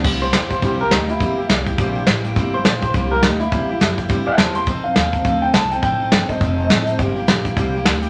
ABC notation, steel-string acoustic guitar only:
X:1
M:4/4
L:1/8
Q:"Swing" 1/4=207
K:Cmix
V:1 name="Steel-string acoustic guitar"
[C,G,B,EG] [B,EG] [G,B,EG] [B,EG] [C,G,B,EG] [B,EG] [G,B,EG] [B,EG] | [C,G,B,EG] [B,EG] [G,B,EG] [B,EG] [C,G,B,EG] [B,EG] [G,B,EG] [B,EG] | [C,G,B,EG] [B,EG] [G,B,EG] [B,EG] [C,G,B,EG] [B,EG] [G,B,EG] [B,EG] | [C,G,B,EG] [B,EG] [G,B,EG] [B,EG] [C,G,B,EG] [B,EG] [G,B,EG] [B,EG] |
[F,C_EA] [CEA] [F,CEA] [CEA] [F,CEA] [CEA] [F,CEA] [CEA] | [F,C_EA] [CEA] [F,CEA] [CEA] [F,CEA] [CEA] [F,CEA] [CEA] | [C,G,B,EG] [B,EG] [G,B,EG] [B,EG] [C,G,B,EG] [B,EG] [G,B,EG] [B,EG] |]